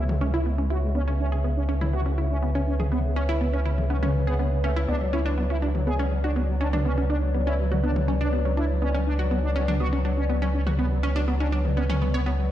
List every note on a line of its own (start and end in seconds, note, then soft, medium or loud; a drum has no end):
0.00 4.86 C#2 medium
0.00 12.51 B4 medium
0.00 12.51 C#5 medium
0.00 4.84 E5 medium
0.00 downlifter medium
0.09 0.16 G#3 medium
0.09 mid tom medium
0.21 0.28 G#3 medium
0.21 0.30 C#4 loud
0.34 0.42 E4 loud
0.34 0.41 E4 medium
0.46 0.53 G#3 medium
0.46 0.58 B3 medium
0.58 0.65 G#3 medium
0.58 0.63 C#4 medium
0.70 0.75 E4 medium
0.70 0.78 F#4 medium
0.83 0.90 G#3 medium
0.95 1.03 B3 medium
0.95 1.02 C#4 loud
1.08 1.14 C#3 medium
1.08 1.19 C#4 loud
1.20 1.27 C#4 medium
1.32 1.39 C#3 medium
1.32 1.40 G#4 medium
1.44 1.51 C#3 medium
1.44 1.56 B3 medium
1.57 1.64 C#4 medium
1.69 1.76 C#3 medium
1.69 1.77 C#4 loud
1.81 1.88 C#3 medium
1.81 1.89 E4 loud
1.81 mid tom medium
1.93 2.05 B3 medium
1.93 2.01 F#4 medium
2.06 2.13 C#3 medium
2.06 2.11 C#4 medium
2.18 2.25 C#3 medium
2.18 2.23 E4 medium
2.31 2.37 C#4 medium
2.43 2.50 C#3 medium
2.43 2.51 B3 medium
2.55 2.62 C#3 medium
2.55 2.67 C#4 loud
2.67 2.74 C#4 medium
2.80 2.87 C#3 medium
2.80 2.88 G#4 medium
2.80 mid tom medium
2.92 3.04 B3 medium
2.92 2.99 B3 medium
3.04 3.11 C#3 medium
3.16 3.23 C#4 medium
3.16 3.25 C#4 loud
3.29 3.36 C#3 medium
3.29 3.37 E4 loud
3.41 3.48 C#3 medium
3.41 3.53 B3 medium
3.53 3.58 C#4 medium
3.53 3.60 C#4 medium
3.65 3.73 C#3 medium
3.65 3.71 E4 medium
3.78 3.85 C#3 medium
3.78 mid tom medium
3.90 3.98 B3 medium
3.90 3.97 C#4 medium
4.03 4.10 C#3 medium
4.03 4.14 C#4 loud
4.03 mid tom medium
4.15 4.22 C#3 medium
4.27 4.34 B3 medium
4.27 4.35 G#4 medium
4.39 4.46 C#3 medium
4.39 4.51 B3 medium
4.52 4.59 C#3 medium
4.64 4.71 A3 medium
4.64 4.72 C#4 loud
4.76 4.83 C#3 medium
4.76 4.84 E4 loud
4.88 12.51 C#2 medium
4.88 5.00 B3 medium
4.88 4.96 D4 loud
4.88 12.51 D5 medium
5.01 5.08 F#3 medium
5.13 5.21 C#4 loud
5.13 5.20 E4 medium
5.26 5.33 F#3 medium
5.26 5.34 D4 loud
5.38 5.45 F#3 medium
5.38 5.50 B3 medium
5.50 5.55 C#4 medium
5.50 5.57 E4 medium
5.62 5.69 F#3 medium
5.62 5.67 D4 medium
5.75 5.82 F#3 medium
5.75 mid tom medium
5.87 5.95 B3 medium
5.87 5.94 G#4 medium
5.99 6.06 F#3 medium
5.99 6.11 C#4 loud
6.11 6.19 F#3 medium
6.24 6.31 D4 medium
6.24 6.32 F#4 medium
6.36 6.43 F#3 medium
6.36 6.48 B3 medium
6.49 6.55 F#3 medium
6.61 6.69 C#4 loud
6.61 6.68 D4 medium
6.73 6.80 F#3 medium
6.73 6.81 D4 loud
6.73 mid tom medium
6.85 6.97 B3 medium
6.85 6.92 C#4 medium
6.98 7.05 F#3 medium
6.98 7.03 C#4 medium
7.10 7.17 D4 medium
7.10 7.15 D4 medium
7.22 7.29 F#3 medium
7.34 7.42 F#3 medium
7.34 7.43 B3 medium
7.47 7.58 C#4 loud
7.47 7.54 E4 medium
7.59 7.66 F#3 medium
7.72 7.78 F#3 medium
7.72 7.80 F#4 medium
7.72 mid tom medium
7.84 7.96 B3 medium
7.84 7.91 D4 medium
7.96 8.03 F#3 medium
7.96 mid tom medium
8.08 8.15 F#3 medium
8.08 8.16 C#4 loud
8.21 8.29 D4 loud
8.21 8.28 D4 medium
8.33 8.40 F#3 medium
8.33 8.45 B3 medium
8.45 8.52 F#3 medium
8.45 8.50 C#4 medium
8.57 8.62 D4 medium
8.57 8.64 E4 medium
8.70 8.77 F#3 medium
8.82 8.90 B3 medium
8.82 8.89 C#4 loud
8.94 9.01 F#3 medium
8.94 9.06 C#4 loud
9.07 9.14 D4 medium
9.19 9.26 F#3 medium
9.19 9.27 F#4 medium
9.31 9.38 F#3 medium
9.31 9.43 B3 medium
9.44 9.51 D4 medium
9.56 9.63 F#3 medium
9.56 9.64 C#4 loud
9.68 9.75 F#3 medium
9.68 9.76 D4 loud
9.68 mid tom medium
9.80 9.92 B3 medium
9.80 9.87 F#4 medium
9.93 10.00 F#3 medium
9.93 9.98 C#4 medium
10.05 10.12 F#3 medium
10.05 10.10 D4 medium
10.17 10.24 C#4 medium
10.29 10.37 F#3 medium
10.29 10.38 B3 medium
10.42 10.49 F#3 medium
10.42 10.53 C#4 medium
10.54 10.61 C#4 medium
10.67 10.74 F#3 medium
10.67 10.75 F#4 medium
10.67 mid tom loud
10.79 10.91 B3 medium
10.79 10.86 B3 medium
10.91 10.98 F#3 medium
11.03 11.10 C#4 medium
11.03 11.12 C#4 loud
11.16 11.23 F#3 medium
11.16 11.24 D4 loud
11.28 11.35 F#3 medium
11.28 11.40 B3 medium
11.40 11.45 C#4 medium
11.40 11.47 D4 medium
11.52 11.60 F#3 medium
11.52 11.57 D4 medium
11.65 11.72 F#3 medium
11.65 mid tom medium
11.77 11.85 B3 medium
11.77 11.84 C#4 medium
11.90 11.96 F#3 medium
11.90 12.01 C#4 loud
11.90 mid tom medium
12.02 12.09 F#3 medium
12.02 12.14 B3 medium
12.14 12.21 B3 medium
12.14 12.22 C#5 medium
12.26 12.33 F#3 medium
12.26 12.31 B3 medium
12.39 12.46 F#3 medium